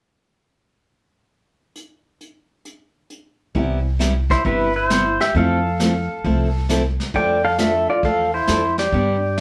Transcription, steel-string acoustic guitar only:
3.55 3.78 C3 medium
3.55 3.78 G3 medium
3.55 3.78 B3 medium
3.55 3.78 E4 medium
3.55 3.78 G4 medium
3.99 4.12 C3 medium
3.99 4.12 G3 medium
3.99 4.12 B3 medium
3.99 4.12 E4 medium
3.99 4.13 G4 medium
4.45 4.68 C3 medium
4.45 4.68 G3 medium
4.45 4.68 B3 medium
4.45 4.68 E4 medium
4.45 4.68 G4 medium
4.90 5.02 C3 medium
4.90 5.02 G3 medium
4.90 5.02 B3 medium
4.90 5.03 E4 medium
4.90 5.02 G4 medium
5.35 5.58 F3 medium
5.35 5.58 A3 medium
5.35 5.58 C4 medium
5.35 5.58 E4 medium
5.35 5.58 A4 medium
5.80 5.92 F3 medium
5.80 5.92 A3 medium
5.80 5.92 C4 medium
5.80 5.92 E4 medium
5.80 5.92 A4 medium
6.24 6.47 F3 medium
6.24 6.47 A3 medium
6.24 6.48 C4 medium
6.24 6.48 E4 medium
6.24 6.48 A4 medium
6.69 6.81 F3 medium
6.69 6.81 A3 medium
6.69 6.82 C4 medium
6.69 6.82 E4 medium
6.69 6.82 A4 medium
7.14 7.37 F3 medium
7.14 7.37 A3 medium
7.14 7.37 D4 medium
7.14 7.38 A4 medium
7.59 7.71 F3 medium
7.59 7.71 A3 medium
7.59 7.71 D4 medium
7.59 7.72 A4 medium
8.04 8.26 F3 medium
8.04 8.27 A3 medium
8.04 8.27 D4 medium
8.04 8.27 A4 medium
8.48 8.60 F3 medium
8.48 8.60 A3 medium
8.48 8.61 D4 medium
8.48 8.61 A4 medium
8.93 9.16 D3 medium
8.93 9.16 G3 medium
8.93 9.16 B3 medium
8.93 9.16 D4 medium
8.93 9.16 G4 medium

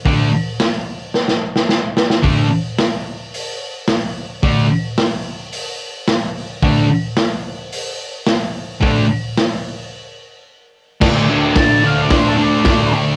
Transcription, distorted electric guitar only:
0.05 0.27 D3 loud
0.05 0.28 A3 loud
0.05 0.28 D4 loud
2.23 2.46 D3 medium
2.23 2.46 A3 medium
2.23 2.46 D4 loud
4.43 4.65 D3 medium
4.43 4.66 A3 loud
4.43 4.66 D4 loud
6.63 6.85 D3 loud
6.63 6.85 A3 medium
6.63 6.85 D4 loud
8.81 9.04 D3 loud
8.81 9.05 A3 loud
8.81 9.05 D4 loud
11.01 11.29 D3 loud
11.01 11.30 A3 loud
11.01 11.30 D4 loud
11.29 11.56 D3 medium
11.29 11.57 A3 medium
11.29 11.57 D4 medium
11.56 11.83 D3 medium
11.56 11.83 A3 medium
11.56 11.84 D4 medium
11.84 12.09 D3 medium
11.84 12.10 A3 medium
11.84 12.11 D4 loud
12.10 12.36 D3 medium
12.10 12.37 A3 medium
12.10 12.38 D4 medium
12.37 12.64 D3 loud
12.37 12.65 A3 loud
12.37 12.66 D4 loud
12.65 12.92 D3 medium
12.65 12.92 A3 loud
12.65 12.94 D4 loud
12.93 13.16 D3 medium
12.93 13.16 A3 medium
12.93 13.16 D4 medium

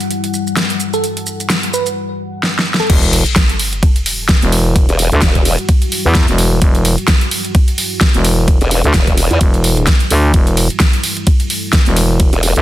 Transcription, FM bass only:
2.90 3.24 E1 loud
4.42 4.87 E1 loud
5.12 5.21 D2 loud
6.05 6.26 E2 loud
6.28 6.60 E1 medium
6.62 6.96 E1 loud
8.14 8.59 E1 loud
8.84 8.93 D2 loud
9.41 9.86 E1 loud
10.11 10.32 D2 loud
10.34 10.68 E1 loud
11.86 12.31 E1 loud
12.56 12.62 D2 loud

